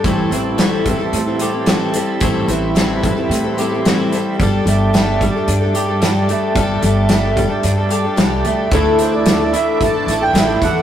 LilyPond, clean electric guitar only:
\new Staff \with { instrumentName = "Clean electric guitar" } { \time 4/4 \key a \minor \tempo 4 = 111 a,8 e8 g8 e8 c'8 g'8 c'8 g8 | a,8 e8 g8 e8 c'8 g'8 c'8 g8 | g8 a8 a8 g8 d'8 g'8 d'8 a8 | g8 a8 a8 g8 d'8 g'8 d'8 a8 |
<d e a d' e'>4. <d e a d' e'>4. <d e a d' e'>4 | }